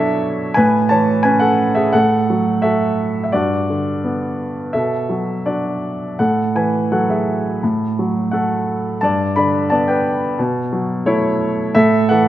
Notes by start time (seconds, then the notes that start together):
Already playing: B2 F#3 D4 E4 A4 C#5 E5
0.54 A2 B4 G#5
0.89 E3 C#5 A5
1.23 C#4 B4 G#5
1.40 A4 F#5
1.75 G#4 E5
1.93 A2 A4 F#5
2.30 F#3
2.62 F#4 A4 E5
3.24 E5
3.32 G2 F#4 D5
3.70 D3
4.04 B3
4.73 B2 A4 E5
5.09 F#3
5.46 D4 F#4 D5
6.19 A2 A4 F#5
6.55 E3 B4 G#5
6.92 F#3 A4 F#5
7.10 G#4 E5
7.63 A2
7.99 F#3
8.31 A3 A4 F#5
9.01 G2 D5 A5
9.36 D3 D5 B5
9.70 B3 D5 A5
9.88 B4 G5
10.39 B2
10.73 F#3
11.06 A3 E4 C#5
11.75 A2 A4 E5
12.09 E3 A4 F#5